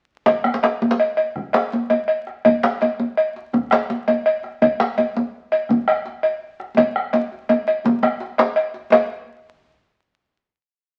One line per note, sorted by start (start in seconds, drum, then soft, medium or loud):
0.26 bombo low medium
0.26 cowbell soft
0.26 djembe slap medium
0.26 djembe tone medium
0.26 djembe bass medium
0.44 bombo rim medium
0.44 djembe tone medium
0.54 djembe slap medium
0.63 cowbell soft
0.63 djembe slap medium
0.81 djembe tone medium
0.91 djembe slap medium
1.00 cowbell soft
1.17 cowbell soft
1.17 djembe slap soft
1.36 bombo rim soft
1.36 bombo low loud
1.36 djembe tone medium
1.36 djembe bass medium
1.53 bombo rim medium
1.53 cowbell soft
1.53 djembe slap soft
1.53 djembe slap loud
1.72 djembe slap medium
1.72 djembe tone medium
1.90 cowbell soft
1.90 djembe tone medium
2.08 cowbell soft
2.27 bombo rim soft
2.27 djembe slap medium
2.45 bombo low medium
2.45 cowbell medium
2.45 djembe tone medium
2.45 djembe bass medium
2.63 bombo rim medium
2.63 djembe slap medium
2.81 cowbell soft
2.81 djembe slap medium
2.81 djembe tone medium
2.99 djembe tone soft
2.99 djembe tone medium
3.17 cowbell soft
3.36 djembe slap medium
3.53 bombo rim soft
3.53 bombo low medium
3.53 djembe tone medium
3.53 djembe bass medium
3.71 bombo rim medium
3.71 cowbell soft
3.71 djembe slap soft
3.71 djembe slap medium
3.90 djembe slap medium
3.90 djembe tone medium
4.07 cowbell soft
4.07 djembe tone soft
4.07 djembe tone medium
4.26 cowbell soft
4.43 bombo rim soft
4.43 djembe slap soft
4.62 bombo low medium
4.62 cowbell medium
4.62 djembe tone medium
4.62 djembe bass medium
4.80 bombo rim medium
4.80 djembe slap medium
4.98 cowbell soft
4.98 djembe slap medium
4.98 djembe tone medium
5.16 djembe tone medium
5.52 cowbell soft
5.52 djembe slap medium
5.69 bombo rim soft
5.69 bombo low loud
5.69 djembe tone medium
5.69 djembe bass medium
5.88 bombo rim medium
5.88 cowbell soft
5.88 djembe slap soft
6.06 djembe slap medium
6.23 cowbell soft
6.23 djembe tone medium
6.60 bombo rim soft
6.60 djembe slap medium
6.77 bombo rim soft
6.77 bombo low medium
6.77 cowbell medium
6.77 djembe tone loud
6.77 djembe tone medium
6.77 djembe bass medium
6.96 bombo rim medium
6.96 djembe slap soft
7.13 cowbell soft
7.13 djembe slap medium
7.13 djembe tone loud
7.32 djembe tone medium
7.49 bombo rim soft
7.49 cowbell soft
7.49 djembe tone medium
7.67 cowbell soft
7.67 djembe slap medium
7.85 bombo low loud
7.85 djembe tone medium
7.85 djembe tone loud
7.85 djembe bass medium
8.03 bombo rim medium
8.03 cowbell soft
8.03 djembe slap soft
8.03 djembe tone medium
8.20 bombo rim soft
8.20 djembe slap medium
8.38 cowbell soft
8.38 djembe slap loud
8.38 djembe tone medium
8.56 bombo rim soft
8.56 cowbell soft
8.56 djembe slap soft
8.74 djembe slap medium
8.92 bombo low medium
8.92 cowbell medium
8.92 djembe slap loud
8.92 djembe bass medium